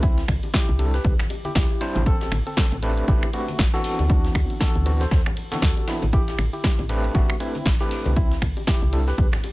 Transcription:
Already playing: C2
0.03 C4 E4, kick, closed hi-hat, cabasa, shaker
0.18 snare, closed hi-hat, cabasa
0.28 C2, finger snap, kick, open hi-hat, ride, high conga, shaker
0.43 closed hi-hat, high bongo, cabasa
0.54 E4 G4, kick, snare, closed hi-hat, cabasa, shaker
0.68 C2, closed hi-hat, high conga, cabasa
0.79 G3 C4 D4 E4 A4, open hi-hat, ride, high bongo, shaker
0.94 G4 B4, snare, closed hi-hat, cabasa
1.04 C2, kick, closed hi-hat, high conga, cabasa, shaker
1.19 finger snap, snare, closed hi-hat, low conga, cabasa
1.30 open hi-hat, ride, high bongo, shaker
1.45 E4 G4, closed hi-hat, high conga, cabasa
1.55 C2, kick, snare, closed hi-hat, cabasa, shaker
1.70 closed hi-hat, high bongo, cabasa
1.81 G3 C4 D4 E4 C5, open hi-hat, ride, shaker
1.95 A1, closed hi-hat, high conga, low conga, cabasa
2.06 C4 A4, kick, closed hi-hat, cabasa, shaker
2.21 snare, closed hi-hat, high bongo, cabasa
2.32 A1, finger snap, open hi-hat, ride, high conga, shaker
2.47 C4 A4, closed hi-hat, cabasa
2.57 kick, snare, closed hi-hat, high bongo, cabasa, shaker
2.71 A1, closed hi-hat, high conga, low conga, cabasa
2.82 A3 C4 D4 G4 B4, open hi-hat, ride, shaker
2.97 closed hi-hat, cabasa
3.08 A1 A3 C4 D4 E4 G4 B4, kick, closed hi-hat, high bongo, high conga, cabasa, shaker
3.23 finger snap, closed hi-hat, cabasa
3.33 A3 C4 D4 F#4 G4 B4, open hi-hat, ride, shaker
3.48 closed hi-hat, high bongo, high conga, cabasa
3.59 A1, kick, snare, closed hi-hat, cabasa, shaker
3.73 E3 B3 C4 D4 F#4 A4, snare, closed hi-hat, cabasa
3.84 open hi-hat, ride
3.99 D2, closed hi-hat, high bongo, high conga, cabasa
4.10 D4 F#4, kick, closed hi-hat, cabasa, shaker
4.24 snare, closed hi-hat, cabasa
4.35 D2, finger snap, kick, open hi-hat, ride, high bongo, high conga, shaker
4.50 closed hi-hat, cabasa
4.60 F#4 A4, kick, snare, closed hi-hat, cabasa, shaker
4.75 D2, closed hi-hat, high conga, cabasa
4.85 E3 B3 C4 D4 F#4, open hi-hat, ride, high bongo, shaker
5.01 A4 C5, snare, closed hi-hat, cabasa
5.11 D2, kick, snare, closed hi-hat, high conga, cabasa, shaker
5.26 finger snap, closed hi-hat, high bongo, low conga, cabasa
5.37 open hi-hat, ride, shaker
5.52 E3 B3 C4 D4 F#4 A4, snare, closed hi-hat, high conga, cabasa, shaker
5.62 D2, kick, snare, closed hi-hat, cabasa
5.77 closed hi-hat, high bongo, cabasa, shaker
5.87 E3 B3 C4 D4 E4, snare, open hi-hat, ride, shaker
6.02 A1, closed hi-hat, high conga, low conga, cabasa
6.13 E4 G4, kick, closed hi-hat, cabasa, shaker
6.28 snare, closed hi-hat, high bongo, cabasa
6.38 A1, finger snap, open hi-hat, ride, high conga, shaker
6.53 E4 G4, closed hi-hat, cabasa
6.64 kick, snare, closed hi-hat, cabasa, shaker
6.78 A1, closed hi-hat, high bongo, high conga, low conga, cabasa
6.89 A3 C4 D4 G4 B4, open hi-hat, ride, shaker
7.04 closed hi-hat, cabasa
7.14 A1 A3 C4 D4 F#4 G4 B4, kick, closed hi-hat, high bongo, high conga, cabasa, shaker
7.30 finger snap, closed hi-hat, cabasa
7.40 A3 C4 D4 E4 G4 B4, open hi-hat, ride, shaker
7.55 closed hi-hat, high conga, cabasa
7.66 A1, kick, snare, closed hi-hat, high bongo, cabasa, shaker
7.80 A3 C4 D4 E4 G4 B4, snare, closed hi-hat, cabasa
7.91 open hi-hat, ride
8.05 C2, closed hi-hat, high bongo, high conga, cabasa
8.16 C4 E4, kick, closed hi-hat, cabasa, shaker
8.31 snare, closed hi-hat, cabasa
8.42 C2, finger snap, kick, open hi-hat, ride, high conga, shaker
8.57 closed hi-hat, high bongo, cabasa
8.67 E4 G4, kick, snare, closed hi-hat, cabasa, shaker
8.82 C2, closed hi-hat, high conga, cabasa
8.93 G3 C4 D4 E4 A4, open hi-hat, ride, high bongo, shaker
9.08 G4 B4, snare, closed hi-hat, cabasa
9.18 C2, kick, closed hi-hat, high conga, cabasa, shaker
9.32 finger snap, snare, closed hi-hat, low conga, cabasa
9.44 open hi-hat, ride, high bongo, shaker

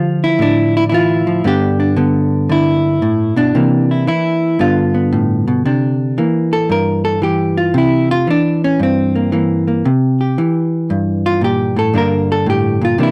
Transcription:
Already playing: D3 F3 F4 G4
0.24 E4
0.39 A2 D4
0.77 E4
0.89 E3 E4
0.94 F4
1.27 F3
1.44 G2 D3 B3 D4 G4
1.80 D4
1.97 D3 B3
2.49 D3 E4
3.02 A2
3.36 B2 D4
3.55 C3 E3 A#3
3.91 E4
4.07 E3 E4
4.59 G2 D3 B3 F4
4.94 B3
5.13 A2
5.48 B2
5.65 C3 D4
6.18 E3 A#3
6.53 A4
6.69 G2 A#4
7.05 A4
7.22 E3 G4
7.57 F4
7.74 C3 E4
8.11 F4
8.27 E3 D4
8.64 C#4
8.79 G2 C4
9.15 A#3
9.32 E3 A#3
9.68 A#3
9.85 C3
10.21 G4
10.38 E3
10.90 G2
11.26 F4
11.41 A#2 G4
11.76 A2 A4
11.94 G2 D3 A#3 D4
11.98 A#4
12.32 A4
12.46 A2 G4
12.81 A#2 F4
12.98 C3 E3 A#3 D4
13.03 E4

